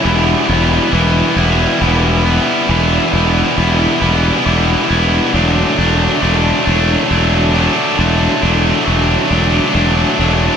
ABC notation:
X:1
M:6/8
L:1/8
Q:3/8=45
K:Em
V:1 name="Distorted electric guitar"
[E,G,B,E] [G,B,E] [E,G,B,E] [G,B,E] [E,G,B,E] [G,B,E] | [E,G,B,E] [G,B,E] [E,G,B,E] [G,B,E] [E,G,B,E] [G,B,E] | [D,F,A,D] [F,A,D] [D,F,A,D] [F,A,D] [D,F,A,D] [F,A,D] | [D,F,A,D] [F,A,D] [D,F,A,D] [F,A,D] [D,F,A,D] [F,A,D] |]
V:2 name="Fingered electric bass" clef=bass
E,,, E,,, E,,, E,,, E,,,2 | E,,, E,,, E,,, E,,, E,,, E,,, | E,,, E,,, E,,, E,,, E,,,2 | E,,, E,,, E,,, E,,, E,,, E,,, |]